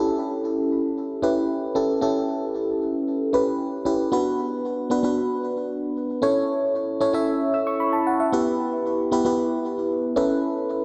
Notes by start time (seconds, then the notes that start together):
Already playing: C#4 E4 G4 A4
1.22 C#4 E4 G4 B4
1.75 C#4 E4 G4 A4
2.01 C#4 E4 G4 A4
3.33 C#4 E4 G4 B4
3.85 C#4 E4 G4 B4
4.12 B3 D4 F#4 B4
4.90 B3 D4 F#4 B4
5.03 B3 D4 F#4 B4
6.22 C#4 E4 A4 C#5
7.00 C#4 E4 A4 C#5
7.13 C#4 E4 A4 E5
7.54 E6
7.67 C#6
7.80 B5
7.93 A5
8.07 F#5
8.20 E5
8.32 B3 E4 G4 B4
9.12 B3 E4 G4 B4
9.25 B3 E4 G4 B4
10.16 C#4 E4 A4 B4